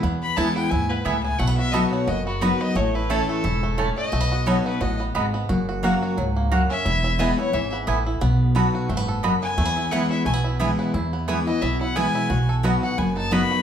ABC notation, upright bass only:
X:1
M:4/4
L:1/8
Q:"Swing" 1/4=176
K:E
V:1 name="Upright bass" clef=bass
E,,2 E,,2 D,,2 C,,2 | B,,,4 F,,,4 | A,,,4 E,,,4 | B,,,4 A,,,2 G,,,2 |
F,,,4 C,,4 | E,,,4 G,,,2 A,,,2 | B,,,4 F,,,4 | E,,4 B,,,4 |
E,,4 B,,,4 | B,,,4 F,,,4 |]